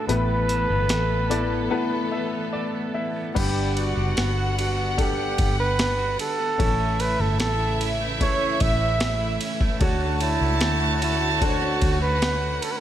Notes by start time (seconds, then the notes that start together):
Already playing: E3 A3 D4 E4 F#4 A4 B4
0.07 A1 A2 B3 E4 A4 B4, closed hi-hat
0.29 B3
0.48 A4, closed hi-hat
0.69 G1 B3
0.89 A1 A4, snare, closed hi-hat
1.10 B3
1.30 B3 E4 A4 D5 A5, closed hi-hat
1.51 B3
1.70 A2 B3 E4 A4 B4 F#5
1.91 B3
2.12 A4 E5
2.33 B3
2.53 A4 D5
2.74 B3
2.94 E4 E5
3.16 B3
3.34 G1 G2 D3 G3 B3 D4 G4 B4 D5 F#5, kick, crash, ride
3.57 D4
3.77 B3 F#4, ride
3.97 F#1 D4
4.17 G1 B3 F#5, snare, ride
4.37 F#4
4.58 D4 F#4, ride
4.78 B3
4.97 G3 D4 G4 A4 F#5, kick, ride
5.18 D4
5.38 G1 B3, kick, ride
5.58 D4 B4
5.78 B3, snare, ride
5.99 F#4
6.19 D4 A4, ride
6.39 B3
6.58 A1 A2 C#3 E3 A3 C#4 E4 A4 C#5 E5, kick, ride
6.79 C#4
7.00 A3 B4, ride
7.20 G1 C#4 A4
7.40 A1 E3 A4, snare, ride
7.60 E4
7.80 C#4, ride
8.01 A3
8.21 A2 C#4 E4 A4 C#5, kick, ride
8.41 C#4
8.60 A1 A3 E5, kick, ride
8.81 C#4
9.00 E3, snare, ride
9.21 E4
9.41 C#4, ride
9.61 A3, kick
9.80 D2 D3 D4 F#4 A4 C#5 A5, kick, ride
10.02 C#4
10.20 A3 E4, ride
10.41 C#2 C#4
10.61 D2 A3, snare, ride
10.83 F#4
11.02 C#4 E4, ride
11.22 A3
11.42 D3 D4 F#4 A4 C5, kick, ride
11.49 C#5
11.62 C#4
11.81 D2 A3, kick, ride
12.02 C#4 B4
12.21 A3 F#5, snare, ride
12.42 F#4
12.62 C#4 A4, ride
12.71 B4